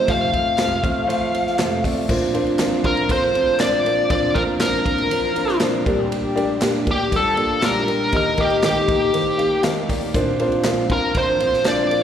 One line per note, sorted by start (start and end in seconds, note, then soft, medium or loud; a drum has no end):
0.00 1.80 F2 medium
0.00 1.80 C3 medium
0.00 0.80 D#3 medium
0.00 0.07 A3 medium
0.00 0.80 D#4 loud
0.00 0.07 F4 medium
0.00 2.11 G4 medium
0.00 2.11 A4 loud
0.00 0.07 C5 loud
0.00 0.11 C5 medium
0.07 0.33 F2 medium
0.07 0.33 C3 medium
0.07 0.33 F3 medium
0.07 0.26 A3 medium
0.07 0.34 A3 medium
0.07 0.33 C4 medium
0.07 0.26 F4 medium
0.07 0.32 F4 loud
0.07 0.26 C5 loud
0.07 1.81 F5 loud
0.07 kick loud
0.07 ride medium
0.32 0.58 F3 soft
0.32 0.51 A3 medium
0.32 0.58 A3 medium
0.32 0.59 C4 medium
0.32 0.52 F4 medium
0.32 0.58 F4 medium
0.32 0.52 C5 medium
0.32 kick medium
0.32 ride medium
0.58 0.84 F2 medium
0.58 0.84 C3 medium
0.58 0.84 F3 medium
0.58 0.77 A3 medium
0.58 0.84 A3 medium
0.58 0.83 C4 medium
0.58 0.77 F4 medium
0.58 0.82 F4 loud
0.58 0.77 C5 medium
0.58 snare loud
0.58 clap medium
0.58 ride medium
0.82 1.07 F3 medium
0.82 1.02 A3 medium
0.82 1.08 A3 medium
0.82 1.09 C4 medium
0.82 1.01 F4 medium
0.82 1.09 F4 medium
0.82 1.02 C5 medium
0.82 kick medium
0.82 ride medium
1.07 1.59 F3 medium
1.07 1.83 F3 medium
1.07 1.26 A3 loud
1.07 1.58 A3 medium
1.07 1.59 C4 medium
1.07 1.26 F4 loud
1.07 1.83 F4 medium
1.07 1.60 F4 medium
1.07 1.27 C5 loud
1.07 ride medium
1.33 1.52 A3 medium
1.33 1.53 F4 medium
1.33 1.52 C5 medium
1.33 ride medium
1.47 snare soft
1.59 1.84 F2 loud
1.59 1.84 C3 medium
1.59 1.84 F3 medium
1.59 1.78 A3 medium
1.59 1.84 A3 loud
1.59 1.84 C4 loud
1.59 1.77 F4 medium
1.59 1.83 F4 loud
1.59 1.78 C5 loud
1.59 snare loud
1.59 clap medium
1.59 ride medium
1.84 2.08 F3 soft
1.84 2.03 A3 medium
1.84 2.08 A3 medium
1.84 2.07 C4 medium
1.84 2.08 F4 medium
1.84 2.03 F4 medium
1.84 2.03 D5 loud
1.84 kick medium
1.84 open hi-hat medium
1.84 ride medium
2.08 2.34 A#2 medium
2.08 4.07 A#2 medium
2.08 2.34 F3 medium
2.08 5.57 F3 medium
2.08 4.07 F3 medium
2.08 2.28 A#3 loud
2.08 2.34 C4 medium
2.08 2.34 D4 medium
2.08 2.28 D4 medium
2.08 5.58 F4 loud
2.08 2.33 F4 medium
2.08 2.28 F4 loud
2.08 2.28 C5 loud
2.08 kick loud
2.08 crash medium
2.34 2.53 A#3 loud
2.34 2.60 C4 medium
2.34 2.53 D4 loud
2.34 2.60 D4 medium
2.34 2.53 F4 loud
2.34 2.60 F4 medium
2.34 2.53 C5 loud
2.34 ride medium
2.47 ride soft
2.59 2.85 A#2 medium
2.59 2.85 F3 loud
2.59 2.79 A#3 medium
2.59 2.85 C4 loud
2.59 2.79 D4 medium
2.59 2.84 D4 medium
2.59 2.79 F4 medium
2.59 2.83 F4 loud
2.59 2.79 C5 medium
2.59 snare loud
2.59 clap medium
2.59 ride medium
2.84 3.03 A#3 medium
2.84 3.08 C4 medium
2.84 3.03 D4 medium
2.84 3.09 D4 medium
2.84 3.03 F4 medium
2.84 3.10 F4 medium
2.84 3.11 A#4 medium
2.84 3.03 C5 medium
2.84 kick loud
2.84 ride medium
2.97 ride soft
3.09 3.35 F3 medium
3.09 3.28 A#3 medium
3.09 3.35 C4 medium
3.09 3.29 D4 medium
3.09 3.34 D4 medium
3.09 3.33 F4 medium
3.09 3.28 A4 medium
3.09 3.63 C5 loud
3.09 kick loud
3.09 ride medium
3.34 3.53 A#3 medium
3.34 3.59 C4 medium
3.34 3.53 D4 medium
3.34 3.59 D4 medium
3.34 3.60 F4 medium
3.34 3.53 F4 medium
3.34 3.53 C5 medium
3.34 ride medium
3.59 4.08 A#2 medium
3.59 4.09 F3 medium
3.59 3.78 A#3 loud
3.59 4.09 C4 loud
3.59 3.78 D4 medium
3.59 4.10 D4 medium
3.59 3.79 F4 medium
3.59 4.10 F4 loud
3.59 3.79 C5 loud
3.59 4.10 D5 loud
3.59 snare loud
3.59 clap loud
3.59 ride medium
3.85 4.04 A#3 medium
3.85 4.04 D4 medium
3.85 4.04 F4 medium
3.85 4.04 C5 medium
3.85 ride medium
4.09 4.35 A#2 medium
4.09 5.83 A#2 medium
4.09 4.35 F3 medium
4.09 5.83 F3 medium
4.09 4.29 A#3 loud
4.09 4.36 C4 loud
4.09 4.29 D4 medium
4.09 4.35 D4 loud
4.09 4.29 F4 medium
4.09 4.34 F4 loud
4.09 4.29 C5 loud
4.09 4.37 D5 loud
4.09 kick loud
4.09 ride medium
4.34 4.54 A#3 loud
4.34 4.60 C4 medium
4.34 4.54 D4 medium
4.34 4.60 D4 medium
4.34 4.54 F4 medium
4.34 4.61 F4 medium
4.34 4.42 A#4 medium
4.34 4.54 C5 loud
4.34 kick medium
4.34 ride medium
4.60 4.86 A#2 medium
4.60 4.86 F3 loud
4.60 4.79 A#3 medium
4.60 4.86 C4 medium
4.60 4.79 D4 medium
4.60 4.85 D4 loud
4.60 4.79 F4 medium
4.60 4.84 F4 loud
4.60 5.57 A#4 medium
4.60 4.79 C5 medium
4.60 snare loud
4.60 clap medium
4.60 ride medium
4.85 5.05 A#3 medium
4.85 5.09 C4 medium
4.85 5.05 D4 medium
4.85 5.10 D4 medium
4.85 5.11 F4 medium
4.85 5.05 F4 medium
4.85 5.05 A#4 medium
4.85 kick medium
4.85 ride medium
4.98 ride soft
5.10 5.36 F3 medium
5.10 5.30 A#3 medium
5.10 5.36 C4 medium
5.10 5.35 D4 medium
5.10 5.30 D4 medium
5.10 5.30 F4 medium
5.10 5.34 F4 medium
5.10 5.30 C5 medium
5.10 ride medium
5.35 5.55 A#3 medium
5.35 5.60 C4 medium
5.35 5.61 D4 medium
5.35 5.55 D4 medium
5.35 5.61 F4 medium
5.35 5.55 F4 medium
5.35 5.55 C5 medium
5.35 ride medium
5.48 snare soft
5.60 5.86 A#2 loud
5.60 5.86 F3 loud
5.60 5.80 A#3 loud
5.60 5.87 C4 loud
5.60 5.80 D4 loud
5.60 5.85 D4 medium
5.60 5.80 F4 loud
5.60 5.86 F4 loud
5.60 5.80 C5 loud
5.60 snare loud
5.60 clap loud
5.60 ride medium
5.85 7.84 A#2 medium
5.85 6.38 A#2 medium
5.85 6.85 G3 medium
5.85 6.62 G3 medium
5.85 6.27 A#3 loud
5.85 6.38 A#3 medium
5.85 6.27 D4 medium
5.85 6.36 D4 medium
5.85 6.84 G4 medium
5.85 6.27 G4 medium
5.85 6.35 G4 medium
5.85 6.27 D5 loud
5.85 kick loud
5.85 ride medium
6.12 ride medium
6.36 6.55 A#3 loud
6.36 6.61 A#3 medium
6.36 6.55 D4 loud
6.36 6.61 D4 medium
6.36 6.62 G4 medium
6.36 6.55 G4 loud
6.36 6.55 D5 loud
6.36 ride medium
6.61 6.87 A#2 loud
6.61 6.87 G3 medium
6.61 6.81 A#3 medium
6.61 6.87 A#3 loud
6.61 6.80 D4 medium
6.61 6.87 D4 loud
6.61 6.81 G4 medium
6.61 6.86 G4 loud
6.61 6.80 D5 loud
6.61 snare loud
6.61 clap loud
6.61 ride medium
6.86 7.06 A#3 medium
6.86 7.12 A#3 soft
6.86 7.06 D4 medium
6.86 7.13 D4 medium
6.86 7.06 G4 medium
6.86 7.12 G4 medium
6.86 7.06 D5 medium
6.86 kick loud
6.86 ride medium
6.91 7.15 G4 medium
7.11 7.87 F3 medium
7.11 7.38 G3 medium
7.11 7.31 A#3 medium
7.11 7.38 A#3 medium
7.11 7.31 D4 medium
7.11 7.37 D4 medium
7.11 7.87 F4 medium
7.11 7.31 G4 medium
7.11 7.36 G4 medium
7.11 7.30 D5 medium
7.11 kick medium
7.11 ride medium
7.16 7.65 A4 loud
7.37 7.56 A#3 medium
7.37 7.62 A#3 medium
7.37 7.56 D4 medium
7.37 7.62 D4 medium
7.37 7.56 G4 medium
7.37 7.62 G4 medium
7.37 7.56 D5 medium
7.37 ride medium
7.62 8.13 A#2 loud
7.62 8.12 G3 loud
7.62 7.81 A#3 loud
7.62 8.14 A#3 medium
7.62 7.81 D4 medium
7.62 8.13 D4 loud
7.62 7.81 G4 medium
7.62 8.14 G4 loud
7.62 8.15 A#4 loud
7.62 7.81 D5 loud
7.62 snare loud
7.62 clap loud
7.62 ride medium
7.87 8.06 A#3 medium
7.87 8.07 D4 medium
7.87 8.07 G4 medium
7.87 8.07 A#4 medium
7.87 ride medium
8.12 10.10 D#2 medium
8.12 10.11 A#2 medium
8.12 9.85 D#3 medium
8.12 8.38 D#3 medium
8.12 8.32 A#3 medium
8.12 8.39 A#3 medium
8.12 9.85 D#4 medium
8.12 8.32 D#4 medium
8.12 8.38 D#4 loud
8.12 8.32 G4 medium
8.12 8.37 G4 loud
8.12 8.32 D#5 loud
8.12 kick loud
8.12 ride medium
8.17 8.41 A#4 loud
8.37 8.57 A#3 loud
8.37 8.62 A#3 medium
8.37 8.57 D#4 medium
8.37 8.63 D#4 medium
8.37 8.63 G4 medium
8.37 8.57 G4 medium
8.37 8.63 G4 loud
8.37 8.57 D#5 loud
8.37 kick medium
8.37 ride medium
8.50 ride soft
8.63 8.88 D#3 medium
8.63 8.88 A#3 loud
8.63 8.82 A#3 medium
8.63 8.82 D#4 medium
8.63 8.88 D#4 loud
8.63 8.82 G4 medium
8.63 8.87 G4 loud
8.63 9.61 G4 medium
8.63 8.82 A4 medium
8.63 snare loud
8.63 clap medium
8.63 ride medium
8.88 9.07 A#3 medium
8.88 9.13 A#3 medium
8.88 9.07 D#4 medium
8.88 9.14 D#4 medium
8.88 9.14 G4 medium
8.88 9.07 G4 medium
8.88 9.07 D#5 medium
8.88 kick loud
8.88 ride medium
9.13 9.39 D#3 medium
9.13 9.32 A#3 medium
9.13 9.39 A#3 medium
9.13 9.32 D#4 medium
9.13 9.39 D#4 medium
9.13 9.32 G4 medium
9.13 9.38 G4 medium
9.13 9.33 C5 medium
9.13 ride medium
9.38 9.57 A#3 medium
9.38 9.63 A#3 medium
9.38 9.57 D#4 medium
9.38 9.64 D#4 medium
9.38 9.57 G4 medium
9.38 9.64 G4 medium
9.38 9.57 F5 medium
9.38 ride medium
9.63 10.14 D#3 medium
9.63 9.82 A#3 loud
9.63 10.15 A#3 medium
9.63 9.82 D#4 loud
9.63 10.15 D#4 medium
9.63 9.82 G4 loud
9.63 10.15 G4 medium
9.63 9.82 F5 loud
9.63 snare loud
9.63 clap loud
9.63 ride medium
9.89 10.08 A#3 medium
9.89 10.08 D#4 medium
9.89 10.08 G4 medium
9.89 10.08 D5 medium
9.89 kick medium
9.89 open hi-hat medium
9.89 ride medium
10.13 12.03 A#1 medium
10.13 12.03 F2 medium
10.13 10.40 A#2 loud
10.13 12.03 F3 medium
10.13 10.40 F3 medium
10.13 10.33 A#3 loud
10.13 10.40 C4 medium
10.13 10.33 D4 loud
10.13 10.39 D4 loud
10.13 12.03 F4 loud
10.13 10.33 F4 loud
10.13 10.38 F4 loud
10.13 10.33 C5 loud
10.13 kick loud
10.13 hi-hat pedal medium
10.13 ride medium
10.39 10.58 A#3 loud
10.39 10.64 C4 medium
10.39 10.59 D4 loud
10.39 10.64 D4 medium
10.39 10.64 F4 medium
10.39 10.59 F4 loud
10.39 10.59 C5 loud
10.39 ride medium
10.52 ride soft
10.64 10.89 A#2 medium
10.64 10.90 F3 loud
10.64 10.84 A#3 medium
10.64 10.90 C4 medium
10.64 10.89 D4 medium
10.64 10.84 D4 medium
10.64 10.88 F4 loud
10.64 10.84 F4 medium
10.64 10.84 C5 loud
10.64 snare loud
10.64 clap loud
10.64 ride medium
10.90 11.09 A#3 medium
10.90 11.14 C4 soft
10.90 11.09 D4 medium
10.90 11.15 D4 medium
10.90 11.09 F4 medium
10.90 11.17 A#4 medium
10.90 kick loud
10.90 ride medium
11.14 11.40 F3 medium
11.14 11.34 A#3 medium
11.14 11.40 C4 medium
11.14 11.34 D4 medium
11.14 11.39 D4 medium
11.14 11.34 F4 medium
11.14 11.38 F4 medium
11.14 11.34 C5 medium
11.14 11.68 C5 loud
11.14 kick loud
11.14 ride medium
11.39 11.59 A#3 medium
11.39 11.64 C4 medium
11.39 11.59 D4 medium
11.39 11.64 D4 medium
11.39 11.64 F4 medium
11.39 11.58 F4 medium
11.39 11.59 C5 medium
11.39 ride medium
11.53 snare soft
11.64 12.03 A#2 loud
11.64 12.03 F3 medium
11.64 11.84 A#3 loud
11.64 12.03 C4 loud
11.64 11.84 D4 loud
11.64 12.03 D4 medium
11.64 11.84 F4 medium
11.64 12.03 F4 loud
11.64 11.84 C5 loud
11.64 12.03 D5 loud
11.64 snare loud
11.64 clap loud
11.64 ride medium
11.90 12.03 A#3 medium
11.90 12.03 D4 medium
11.90 12.03 F4 medium
11.90 12.03 C5 medium
11.90 ride medium